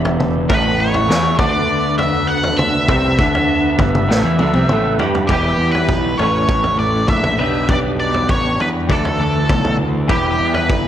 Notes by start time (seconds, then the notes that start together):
Already playing: E1 E2 E3 E4 G4
0.05 floor tom
0.20 mid tom
0.49 A1 A2 A3 B3 B4, kick, floor tom
0.80 C#5
0.94 floor tom
1.09 E2 E3, snare
1.38 D2 D3 D5, kick, floor tom, mid tom
1.98 E5, floor tom
2.27 F#5
2.43 floor tom
2.58 E5, mid tom
2.88 C2 C3, kick, floor tom
3.19 D2 D3, kick
3.35 floor tom
3.78 G1 G2, kick, floor tom, mid tom
3.95 mid tom
4.08 A1 A2, snare
4.23 E2 E3
4.39 D2 D3, high tom
4.53 C2 C3, high tom
4.68 A1 A2, mid tom
4.99 G2 G3, floor tom
5.15 floor tom
5.25 E1 E3 G3 E4 G4 B4, kick
5.30 B3 E4 G4 B4, floor tom
5.58 E2
5.72 B4, floor tom
5.89 B1, kick
6.15 A1 A2 A3 C#4 B4 C#5, floor tom
6.19 A3 C#4 E4 B4
6.49 A1, kick
6.64 floor tom
6.78 A1 D5
7.08 A#1 E5, kick, mid tom
7.24 floor tom, mid tom
7.39 B1 G3 B3 D4 G4 B4 E5
7.69 B1 D5, kick, floor tom
8.00 D5
8.14 floor tom
8.29 A1 C#5, kick
8.60 E2 B4, floor tom
8.88 D2 D3 E3 A3 D4 A4 D5, kick
9.05 floor tom
9.20 D2
9.50 B1, kick, mid tom
9.65 floor tom, mid tom
9.79 D2
10.08 E1 E3 G3 B3 E4 G4 B4, kick, floor tom
10.40 E2
10.54 B4, floor tom
10.69 G1, kick